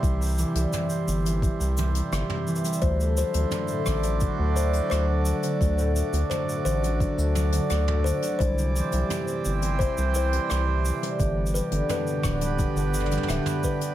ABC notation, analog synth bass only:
X:1
M:4/4
L:1/16
Q:1/4=86
K:Clyd
V:1 name="Analog synth bass" clef=bass
C,,2 z C,, z2 G,,,2 z C,,2 z G,,, z3 | D,,2 z D,, z2 A,,,2 z D,,2 z D,,2 z2 | D,,2 z D,, z2 A,,,2 z D,,2 z D,,2 z2 | C,,2 z C,, z2 G,,,2 z C,,2 z C,,2 z2 |
G,,,2 z G,,, z2 D,,,2 z G,,,2 z D,,, z3 |]